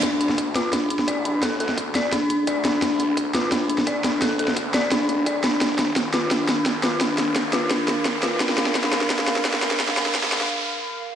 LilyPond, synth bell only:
\new Staff \with { instrumentName = "Synth bell" } { \time 4/4 \key d \phrygian \tempo 4 = 172 d'8 d'8 r8 f'8 d'8 d'8 d''8 d'8 | a'8 a'8 r8 d''8 d'8 d'8 d''8 d'8 | d'8 d'8 r8 f'8 d'8 d'8 d''8 d'8 | a'8 a'8 r8 d''8 d'8 d'8 d''8 d'8 |
d'8 d'8 r8 f'8 d'8 d'8 r8 f'8 | d'8 d'8 r8 f'8 d'8 d'8 r8 f'8 | d'8 d'8 d'8 d'8 d'8 d'8 d'8 d'8 | d'8 d'8 d'8 d'8 r2 | }